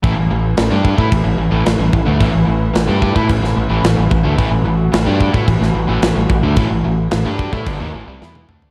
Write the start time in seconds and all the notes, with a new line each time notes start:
0.03 A1 A2 E3 A3 E4 B4, kick, crash
0.17 A1 A2 E3
0.31 A1 A2 E3
0.57 A1 A2 E3, snare, crash
0.71 G2 G3 D4 G4
0.85 kick
0.97 A2 A3 E4, kick
1.10 A1 A2 E3, kick, crash
1.24 A1 A2 E3
1.38 A1 A2 E3
1.51 A1 A2 E3
1.65 A1 A2 E3, snare, crash
1.78 A1 A2 E3
1.92 A1 A2 E3, kick
2.05 D2 D3 A3
2.19 A1 A2 E3, kick, crash
2.33 A1 A2 E3
2.47 A1 A2 E3
2.74 A1 A2 E3, snare, crash
2.88 G2 G3 D4 G4
3.02 kick
3.15 A2 A3 E4, kick
3.29 A1 A2 E3, kick, crash
3.42 A1 A2 E3, snare
3.56 A1 A2 E3
3.69 A1 A2 E3
3.83 A1 A2 E3, snare, crash
3.96 A1 A2 E3
4.11 A1 A2 E3, kick
4.23 D2 D3 A3
4.37 A1 A2 E3 F#4, kick, crash
4.51 A1 A2 E3
4.65 A1 A2 E3
4.92 A1 A2 E3, snare, crash
5.06 G2 G3 D4 G4
5.21 kick
5.34 A2 A3 E4, kick
5.47 A1 A2 E3, kick, crash
5.61 A1 A2 E3, snare
5.75 A1 A2 E3
5.88 A1 A2 E3
6.02 A1 A2 E3, snare, crash
6.16 A1 A2 E3
6.30 A1 A2 E3, kick
6.42 D2 D3 A3
6.56 A1 A2 E3, kick, crash
6.70 A1 A2 E3
6.85 A1 A2 E3
7.11 A1 A2 E3, snare, crash
7.25 G2 G3 D4 G4
7.39 kick
7.52 A2 A3 E4, kick
7.66 G1 G2 D3, kick, crash
7.79 D#2 D#3 A#3
7.93 A1 A2 E3
8.07 C2 C3 G3
8.22 E2 E3 B3 E4, snare
8.35 high tom
8.48 D2 D3 A3 D4, mid tom
8.62 floor tom